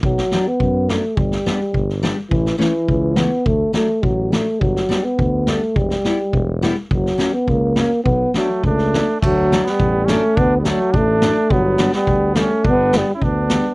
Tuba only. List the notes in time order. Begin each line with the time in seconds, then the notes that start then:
0.03 B1
0.60 F#2
1.17 G1
1.74 G1
2.31 A1
2.89 C#2
3.46 D2
4.03 A1
4.61 G1
5.19 D2
5.76 E1
6.33 E1
6.91 F#1
7.48 C#2
8.06 B1
8.64 C#2
9.23 D2
9.79 A1
10.37 D2
10.94 A1
11.50 G1
12.08 D2
12.65 G1
13.22 D2